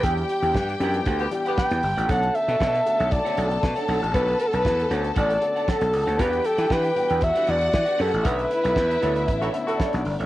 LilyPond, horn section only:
\new Staff \with { instrumentName = "Horn section" } { \time 4/4 \key b \minor \tempo 4 = 117 r2 r16 <b g' b'>16 r16 <b g' b'>8. r8 | r1 | r1 | r1 |
r2 r16 <e' fis' a'>16 r16 <e' fis' a'>8. r8 | }